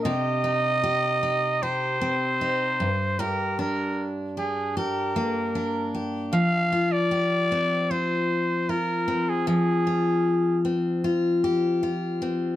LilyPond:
<<
  \new Staff \with { instrumentName = "Trumpet" } { \time 4/4 \key f \dorian \tempo 4 = 76 ees''2 c''2 | bes'8 bes'8. r16 aes'8 bes'4. r8 | f''8. d''4~ d''16 c''4 bes'8. aes'16 | aes'4. r2 r8 | }
  \new Staff \with { instrumentName = "Steel-string acoustic guitar" } { \time 4/4 \key f \dorian <c g'>8 ees'8 g'8 ees'8 g'8 c'8 ees'8 g,8 | <g, g'>8 d'4 d'8 g'8 bes8 d'8 g'8 | f8 f'8 g'8 c'8 f'4 f'8 c'8 | f8 f'4 c'8 f'8 g'8 f'8 c'8 | }
>>